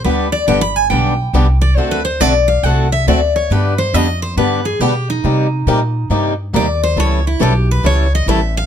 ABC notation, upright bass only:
X:1
M:4/4
L:1/8
Q:"Swing" 1/4=138
K:Gphr
V:1 name="Upright bass" clef=bass
D,,2 G,,,2 =B,,,2 C,,2 | D,,2 =B,,,2 C,,2 D,,2 | G,,2 F,,2 G,,2 =B,,2 | C,2 B,,2 G,,2 E,,2 |
^C,,2 =B,,,2 C,,2 =A,,,2 |]